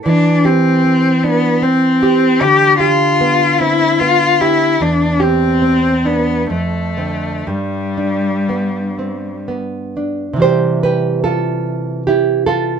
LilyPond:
<<
  \new Staff \with { instrumentName = "Cello" } { \time 3/4 \key c \major \tempo 4 = 74 d'8 c'4 b8 c'4 | g'8 f'4 e'8 f'8 e'8 | d'8 c'4 b8 a4 | g2 r4 |
r2. | }
  \new Staff \with { instrumentName = "Nylon-string guitar" } { \time 3/4 \key c \major << { e8 g'8 c'8 d'8 c'8 g'8 | d8 g'8 b8 c'8 b8 g'8 | e,8 g'8 c'8 d'8 f,8 <d c'>8 | g,8 d'8 b8 c'8 b8 d'8 |
<g' c''>8 <g' b'>8 <f' a'>4 <e' g'>8 <f' a'>8 | } \\ { r2. | r2. | r2. | r2. |
<c e g>2. | } >> }
>>